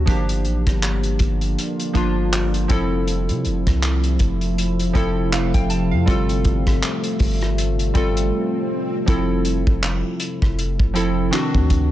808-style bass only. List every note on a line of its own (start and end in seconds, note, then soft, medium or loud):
0.07 0.46 G1 loud
0.45 0.66 A1 medium
0.67 1.18 G1 loud
1.20 1.56 G1 loud
1.95 2.67 G1 loud
2.70 3.31 F1 loud
3.30 3.47 C3 loud
3.45 3.66 F1 medium
3.67 4.18 C2 medium
4.20 4.92 F1 loud
4.95 5.52 F1 loud
5.55 5.93 F1 loud
5.92 6.07 F2 loud
6.08 6.44 G1 loud
6.45 6.81 G1 loud
7.20 7.92 G1 loud
7.95 8.31 G1 loud
9.08 9.65 F1 loud
9.67 10.03 F1 loud
10.42 10.78 F1 loud
10.80 11.31 F1 loud
11.55 11.92 D2 loud